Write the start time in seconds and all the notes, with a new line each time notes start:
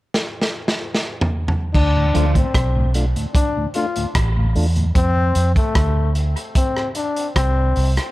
0.14 snare
0.42 snare
0.68 snare
0.95 snare
1.21 floor tom
1.48 floor tom
1.74 D2 D4, kick, crash
1.96 D2 A2
2.14 D2 F3 A3 D4 F4, closed hi-hat
2.35 D2 A2 C4, kick, closed hi-hat
2.54 B1, kick, cross-stick, closed hi-hat
2.76 D2 A2
2.94 A3 D4 F4, closed hi-hat
3.16 D2 A2, closed hi-hat
3.34 D4, kick, closed hi-hat
3.57 D2 A2
3.74 A3 D4 F4, closed hi-hat
3.96 D2 A2, closed hi-hat
4.15 A1, kick, cross-stick, closed hi-hat
4.37 D2 A2
4.55 E2 A3 D4 F4, open hi-hat
4.76 D2 A2, closed hi-hat
4.95 F2 C4, kick, closed hi-hat
5.35 F2, closed hi-hat
5.56 A3, kick, closed hi-hat
5.75 D2, kick, cross-stick, closed hi-hat
6.15 closed hi-hat
6.37 closed hi-hat
6.55 C4, kick, closed hi-hat
6.77 cross-stick
6.95 D4, closed hi-hat
7.16 closed hi-hat
7.36 C2 C4, kick, cross-stick, closed hi-hat
7.76 C2, open hi-hat
7.97 cross-stick, closed hi-hat